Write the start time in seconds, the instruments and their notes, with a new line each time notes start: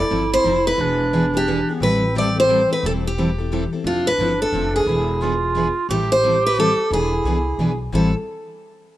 Already playing: clarinet E4, steel-string acoustic guitar D5
0.10 upright bass G1, steel-string acoustic guitar F3 C4 E4 A4
0.32 steel-string acoustic guitar C4 E4 A4 C5
0.44 upright bass F1, steel-string acoustic guitar F3 C4 E4 A4
0.66 steel-string acoustic guitar C4 E4 A4 B4
0.78 upright bass E1, steel-string acoustic guitar E3 B3 D4 G#4 B4, clarinet D4
1.13 steel-string acoustic guitar E3 B3 D4 G#4 B4
1.34 steel-string acoustic guitar B3 D4 G4 G#4
1.47 steel-string acoustic guitar E3 B3 D4 G#4 B4
1.69 steel-string acoustic guitar B3 D4 G#4
1.75 clarinet B3
1.80 upright bass A1, steel-string acoustic guitar E3 G3 C4 E4 A4 B4, clarinet C4
2.15 steel-string acoustic guitar E3 G3 C4 E4 A4 D5
2.36 steel-string acoustic guitar C4 E4 A4
2.40 steel-string acoustic guitar C5
2.49 steel-string acoustic guitar E3 G3 C4 E4 A4
2.70 steel-string acoustic guitar C4 E4 A4 B4
2.83 upright bass E1, steel-string acoustic guitar E3 G3 C4 E4 A4
3.07 steel-string acoustic guitar G4
3.18 steel-string acoustic guitar E3 G3 C4 E4 A4
3.38 steel-string acoustic guitar C4 E4 A4
3.52 steel-string acoustic guitar E3 G3 C4 E4 A4
3.73 steel-string acoustic guitar C4 E4 A4
3.84 upright bass F1, steel-string acoustic guitar F3 C4 E4 F4 A4, clarinet D4
4.07 steel-string acoustic guitar B4
4.18 upright bass G1, steel-string acoustic guitar F3 C4 E4 A4
4.42 steel-string acoustic guitar A4
4.52 upright bass F1, steel-string acoustic guitar F3 C4 E4 A4
4.76 steel-string acoustic guitar G#4
4.86 upright bass E1, steel-string acoustic guitar E3 B3 D4 G#4 B4, clarinet E4
5.21 steel-string acoustic guitar E3 B3 D4 G#4 B4, clarinet F4
5.55 steel-string acoustic guitar E3 B3 D4 G#4 B4
5.89 upright bass A1, steel-string acoustic guitar E3 G3 C4 E4 G4 A4, clarinet G4
6.12 steel-string acoustic guitar C5
6.23 steel-string acoustic guitar E3 G3 C4 E4 A4
6.46 steel-string acoustic guitar B4
6.57 steel-string acoustic guitar E3 G3 C4 E4 A4
6.90 upright bass E1, steel-string acoustic guitar E3 B3 D4 G#4 B4, clarinet E4
7.24 upright bass C2, steel-string acoustic guitar E3 B3 D4 G#4 B4
7.58 upright bass B1, steel-string acoustic guitar E3 B3 D4 G#4 B4
7.92 upright bass A1, steel-string acoustic guitar A2 E3 G3 C4 E4 A4, clarinet E4